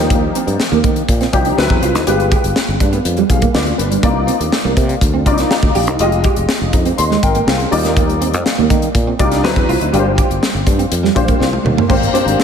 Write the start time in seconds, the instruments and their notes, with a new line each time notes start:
Already playing: fretless electric bass D#2, grand piano F3 D4 D#4 G4
0.10 clean electric guitar A#3, kick, closed hi-hat
0.35 clean electric guitar C4, closed hi-hat
0.47 fretless electric bass G2, muted clean electric guitar stroke, closed hi-hat
0.60 muted clean electric guitar stroke, snare
0.72 fretless electric bass D#2, clean electric guitar A#3
0.84 fretless electric bass D#3, clean electric guitar A#3, kick, closed hi-hat
0.96 closed hi-hat
1.09 fretless electric bass A#2, kick, closed hi-hat
1.21 clean electric guitar C4, snare, closed hi-hat
1.33 fretless electric bass C2, grand piano F3 D4 D#4 G4, muted clean electric guitar stroke, kick, closed hi-hat
1.45 clean electric guitar D4, closed hi-hat
1.57 fretless electric bass D2, grand piano F#3 C4 E4 B4, muted clean electric guitar stroke, snare
1.70 fretless electric bass E2, kick
1.82 fretless electric bass C2, clean electric guitar F4, closed hi-hat
1.95 fretless electric bass D2, clean electric guitar D#4, snare, closed hi-hat
2.06 fretless electric bass G1, grand piano G#3 F4 G4 B4, clean electric guitar G4, closed hi-hat
2.19 muted clean electric guitar stroke, closed hi-hat
2.31 clean electric guitar G4, kick, closed hi-hat
2.44 fretless electric bass G1, closed hi-hat
2.56 muted clean electric guitar stroke, snare
2.68 fretless electric bass G1
2.80 fretless electric bass G2, clean electric guitar D4, kick, closed hi-hat
2.93 clean electric guitar B3, closed hi-hat
3.05 fretless electric bass F2, closed hi-hat
3.17 clean electric guitar G3, closed hi-hat
3.29 fretless electric bass B1, grand piano G#4 F5, muted clean electric guitar stroke, kick, closed hi-hat
3.42 clean electric guitar A#3, kick, closed hi-hat
3.54 fretless electric bass D2, clean electric guitar B3, grand piano F4 D5, snare
3.67 closed hi-hat
3.78 fretless electric bass G1, grand piano D4 B4, muted clean electric guitar stroke, closed hi-hat
3.91 clean electric guitar G3, closed hi-hat
4.03 fretless electric bass C2, grand piano A#3 D#4 F4 D5, clean electric guitar A#3, kick, closed hi-hat
4.27 clean electric guitar C4, closed hi-hat
4.40 fretless electric bass D#2, muted clean electric guitar stroke, closed hi-hat
4.52 muted clean electric guitar stroke, snare
4.65 fretless electric bass C2, clean electric guitar A#3
4.77 fretless electric bass C3, clean electric guitar A#3, kick, closed hi-hat
4.89 closed hi-hat
5.01 fretless electric bass D2, kick, closed hi-hat
5.14 clean electric guitar C4
5.26 fretless electric bass C2, grand piano A#3 D4 F4 D5, muted clean electric guitar stroke, kick, closed hi-hat
5.32 grand piano D#4
5.38 clean electric guitar D#4, snare, closed hi-hat
5.51 muted clean electric guitar stroke, snare
5.63 fretless electric bass D2, kick
5.75 fretless electric bass A#1, clean electric guitar G4, open hi-hat
5.87 fretless electric bass C2, clean electric guitar D#4, closed hi-hat
5.99 fretless electric bass F1, grand piano G#3 F4 G4 D#5, clean electric guitar F4, closed hi-hat
6.12 muted clean electric guitar stroke, closed hi-hat
6.24 clean electric guitar G4, kick, closed hi-hat
6.36 fretless electric bass F1, closed hi-hat
6.49 muted clean electric guitar stroke, snare
6.61 fretless electric bass F1
6.73 fretless electric bass F2, clean electric guitar D#4, kick, closed hi-hat
6.85 clean electric guitar C4, closed hi-hat
6.98 fretless electric bass D#2, grand piano D#5 C6, closed hi-hat
7.11 clean electric guitar G#3, snare
7.23 fretless electric bass G#1, grand piano A#4 G5, muted clean electric guitar stroke, kick, closed hi-hat
7.35 clean electric guitar A#3, closed hi-hat
7.47 fretless electric bass C2, clean electric guitar C4, grand piano G#4 F5, snare
7.60 closed hi-hat
7.71 fretless electric bass D#2, grand piano G3 D#4 F4 D5, muted clean electric guitar stroke, open hi-hat
7.85 clean electric guitar A#3, snare, closed hi-hat
7.97 clean electric guitar A#3, kick, closed hi-hat
8.10 closed hi-hat
8.21 clean electric guitar C4, closed hi-hat
8.34 fretless electric bass F2, muted clean electric guitar stroke, closed hi-hat
8.46 muted clean electric guitar stroke, snare
8.58 fretless electric bass D#2, clean electric guitar A#3
8.70 fretless electric bass D#3, clean electric guitar A#3, kick, closed hi-hat
8.82 closed hi-hat
8.95 fretless electric bass A#2, kick, closed hi-hat
9.07 clean electric guitar C4
9.19 fretless electric bass C2, grand piano G3 D#4 F4 D5, muted clean electric guitar stroke, kick, closed hi-hat
9.32 clean electric guitar D4, snare, closed hi-hat
9.43 fretless electric bass D2, grand piano F#3 C4 E4 B4, muted clean electric guitar stroke, snare
9.56 fretless electric bass E2, kick, closed hi-hat
9.69 fretless electric bass C2, clean electric guitar F4, open hi-hat
9.81 fretless electric bass D2, clean electric guitar D#4, closed hi-hat
9.92 fretless electric bass G1, grand piano G3 D4 F4 A#4, clean electric guitar G4, closed hi-hat
9.99 grand piano C5
10.06 muted clean electric guitar stroke
10.18 clean electric guitar G4, kick, closed hi-hat
10.30 fretless electric bass G1, closed hi-hat
10.43 muted clean electric guitar stroke, snare
10.54 fretless electric bass G1
10.67 fretless electric bass G2, clean electric guitar D4, kick, closed hi-hat
10.79 clean electric guitar C4, closed hi-hat
10.92 fretless electric bass F2, closed hi-hat
11.03 clean electric guitar G3, snare
11.15 fretless electric bass A#1, grand piano G3 D4 F4 C5, muted clean electric guitar stroke, kick, closed hi-hat
11.28 clean electric guitar A#3, kick, closed hi-hat
11.40 fretless electric bass C2, clean electric guitar C4, snare
11.53 high tom
11.64 fretless electric bass D#2, muted clean electric guitar stroke, mid tom
11.77 clean electric guitar A#3, floor tom
11.88 fretless electric bass G#1, grand piano A#3 D4 G4 C5, clean electric guitar A#3, kick, crash
12.03 closed hi-hat
12.13 grand piano A#3 D4 G4 C5, clean electric guitar C4, closed hi-hat
12.26 fretless electric bass G#1, muted clean electric guitar stroke, closed hi-hat
12.39 muted clean electric guitar stroke, snare